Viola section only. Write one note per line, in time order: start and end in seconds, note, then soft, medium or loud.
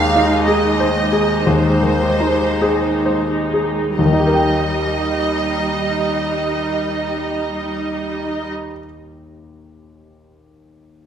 0.00 0.94 G#3 soft
0.00 0.94 D#4 soft
0.96 2.00 G#3 soft
0.96 2.00 D#4 soft
2.02 3.27 G#3 soft
2.02 3.26 D#4 soft
3.29 3.96 G#3 soft
3.29 3.96 D#4 soft
3.97 8.49 G3 soft
3.97 8.49 D#4 soft